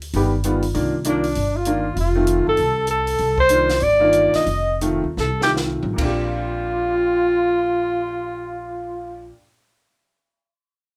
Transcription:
Already playing: D2
0.02 open hi-hat
0.13 G1 D#3 G3 B3 G4, open hi-hat
0.44 D#3 G3 B3 F4, closed hi-hat
0.62 open hi-hat
0.74 C2 D#3 A#3 D4 F4, open hi-hat
1.04 D#3 A#3 D4 F4, closed hi-hat
1.09 D4
1.24 open hi-hat
1.35 G1, open hi-hat
1.56 F4
1.65 D#3 A#3 D4 F4, closed hi-hat
1.96 F1 F4, open hi-hat
2.00 F4
2.15 D#3 A3 C4 F4
2.27 closed hi-hat
2.47 F#1 A4
2.57 C2, open hi-hat
2.87 A4, closed hi-hat
3.07 open hi-hat
3.18 C2, open hi-hat
3.38 C5, kick
3.49 D#3 A#3 D4 F4, closed hi-hat
3.69 snare, open hi-hat
3.80 G1 D5, open hi-hat
4.00 D#3 A#3 D4 F4
4.13 closed hi-hat
4.34 D#5, muted upright bass stroke, snare, open hi-hat
4.46 F1, open hi-hat
4.81 D#3 A3 C4 F4, closed hi-hat
5.04 D#2
5.17 C2 A4, snare
5.42 D#3 A3 C4 F4 G4, snare
5.56 snare
5.82 A1, mid tom
5.93 A#2 A#3
5.98 A#1 C4 F4, kick, crash
6.02 D4 G4

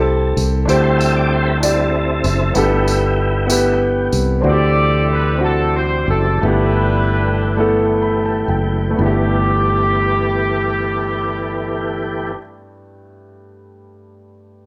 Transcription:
Already playing: C2 C3 C4 E4 G4 A4
0.37 C2, tambourine
0.65 D2 D3 G3 C4 D4 E4 G4 C5 D5, tambourine
0.70 E4 A4
0.83 C5
0.99 E5, tambourine
1.16 D5
1.33 C5
1.46 B4
1.60 D4 E4 G4 D5, tambourine
1.64 G3 C4 E4 A4
2.24 F#1, tambourine
2.54 G1 G2 A3 B3 E4 G4, tambourine
2.58 A4
2.88 tambourine
3.47 B3 E4 G4, tambourine
3.51 A3 B3 E4 B4
4.12 C2, tambourine
4.41 D2 D3 C4 D4 E4 F#4
4.45 E3 G3 D4 G4 A4
4.49 G4 D5
5.12 B4
5.37 C4 D4 E4 F#4
5.44 A4
5.76 C5
6.08 F#1 A4
6.40 G1 G2 E3 A3 B3 E4 G4
6.45 D4 E4 G4 B4
7.57 A3 B3 E4 A4
8.02 B5
8.25 A5
8.48 F#1 G5
8.91 A3
8.96 G1 G2 E3 A3 B3 G4
9.01 E4 G4
9.06 G4

